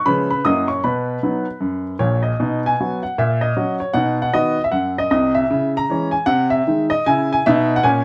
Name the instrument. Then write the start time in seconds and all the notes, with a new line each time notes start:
upright piano
0.06 C#3 F3 G#3 C#4 B4 B5
0.31 B4 B5
0.45 F#2 F#3 A#3 E4 D#5 D#6
0.68 C#5 C#6
0.84 B2 B4 B5
1.23 F#3 B3 D#4
1.60 F#2
1.99 A#1 A#2 C#5
2.23 D#5
2.40 B2 D#4
2.66 G#5
2.80 F#3 B3 F#4
3.03 F#5
3.18 A#2 E5
3.41 D#5
3.56 F#3 C#4 F#4
3.80 C#5
3.93 B2 D#4 F#5
4.22 F#5
4.34 D#3 B3 F#4 D#5
4.64 E5
4.71 F#2 F#5
4.98 D#5
5.11 C2 C3 D#5
5.35 E5
5.50 C#3 E4
5.77 A#5
5.90 E3 G#3 C#4
6.11 G#5
6.26 C3 F#5
6.50 E5
6.67 D#3 G#3 D#4
6.90 D#5
7.06 C#3 E4 G#5
7.33 G#5
7.46 B2 D#4 E5
7.76 F#5
7.83 A#2 C#4 G#5